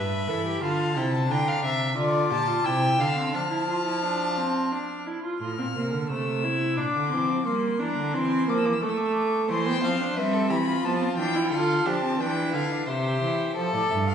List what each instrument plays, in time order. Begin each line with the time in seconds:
Already playing: cello G2, viola B4, violin E5 B5
0.28 cello E3, viola A4
0.45 viola G4
0.61 cello D3, viola F4, violin F5 A5
0.95 cello C3, viola E4, violin G5
1.14 violin A5
1.29 cello D3, viola D4, violin G5 A#5
1.48 violin F5
1.63 cello C3, violin E5
1.97 cello D3, viola F4, violin D5 D6
2.31 cello A#2, viola G4, violin A5
2.48 viola F4
2.64 cello C3, viola E4, violin G5 E6
2.98 cello D3, viola D4, violin F5
3.16 viola C4
3.32 cello F3, viola D4, violin A5 F6
3.50 viola E4
3.68 viola F4
3.86 viola E4
4.03 viola D4
4.37 viola C4
4.72 viola D4
5.07 viola E4
5.24 viola F4
5.41 cello A2, viola F4, violin F6
5.58 cello A#2, viola C4
5.75 cello C3, viola A#3
5.93 cello D3
6.10 cello C3, viola A3, violin E6
6.44 viola E4
6.77 cello A#2, viola D4, violin D6
6.95 cello D3
7.12 cello E3, viola C4
7.29 cello F3
7.46 cello G3, viola A#3, violin C6
7.80 cello E3, viola D4, violin A#5
7.97 cello D3
8.14 cello E3, viola C4, violin C6
8.48 cello F3, viola A#3, violin D6
8.58 violin E6
8.65 cello E3, violin D6
8.73 violin E6
8.81 cello A3, viola A3, violin D6
8.89 violin E6
8.98 violin D6
9.06 violin E6
9.13 violin D6
9.50 cello E3, viola A3, violin C5 C6
9.67 viola B3, violin G5
9.83 cello F3, viola C4, violin F5
10.01 viola D4
10.16 cello G3, viola C4, violin B4 E5
10.33 violin A4
10.50 cello E3, violin G4 B5
10.66 violin F4
10.83 cello F3, viola B3, violin A5
11.01 viola C4
11.17 cello E3, viola D4, violin G5
11.35 viola E4
11.51 cello D3, viola F4, violin A4 F5
11.85 cello F3, viola D4, violin G4 A5
12.03 viola C4
12.19 cello E3, viola D4, violin B4 G5
12.54 cello D3, viola E4, violin F5
12.71 viola D4
12.87 cello C3, viola G4, violin C5 E5
13.22 cello E3
13.56 cello F3, violin A4 C5
13.74 cello A2, violin D5
13.90 cello G2, violin E5
14.07 violin F5